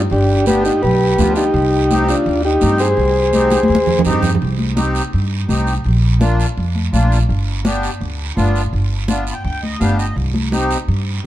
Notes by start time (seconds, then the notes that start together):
0.10 G1 D4 G4, long guiro
0.46 B3 D4 G4 B4, high conga, short guiro
0.65 D#4 G4, short guiro
0.82 B1 G4 B4, long guiro
1.18 D2 B3 D4 F4, high conga, low conga, short guiro
1.36 D#4 G4, short guiro
1.54 C2, long guiro
1.90 C4 D#4 G4, high conga, short guiro
2.08 D4 F4, short guiro
2.26 D#2, long guiro
2.45 D#4 G4
2.61 G2 C4 D#4 G4, high conga, short guiro
2.78 G#4 C5, short guiro
2.97 C2, long guiro
3.33 C4 D#4 G4, high conga, short guiro
3.50 high conga, short guiro
3.63 high conga
3.68 D#2, long guiro
3.75 high conga
3.87 low conga
3.99 low conga
4.04 G2 C4 D#4 G4, short guiro
4.11 low conga
4.22 low conga, short guiro
4.35 low conga
4.40 C2, high conga, long guiro
4.59 high conga
4.76 C4 D#4 G4, high conga, short guiro
4.95 short guiro
5.13 G2, high conga, long guiro
5.48 C2 C4 D#4 G4, high conga, short guiro
5.67 short guiro
5.84 A#1, high conga, long guiro
6.20 A#3 D4 F4, high conga, short guiro
6.40 short guiro
6.57 F2, high conga, long guiro
6.75 high conga
6.92 A#1 A#3 D4 F4, high conga, short guiro
7.12 short guiro
7.29 G1, high conga, long guiro
7.64 B3 D4 G4, high conga, short guiro
7.83 short guiro
8.01 D2, high conga, long guiro
8.36 G1 B3 D4 F4, high conga, short guiro
8.56 short guiro
8.73 G1, high conga, long guiro
9.08 B3 D4 F4, high conga, short guiro
9.27 B5, short guiro
9.33 G5
9.44 D2 G5, high conga, long guiro
9.62 D#5, high conga
9.79 G1 B3 D4 G4 F5, high conga, short guiro
9.99 D#5, short guiro
10.16 C2, high conga, long guiro
10.34 high conga
10.51 C4 D#4 G4, high conga, short guiro
10.71 short guiro
10.88 G2, high conga, long guiro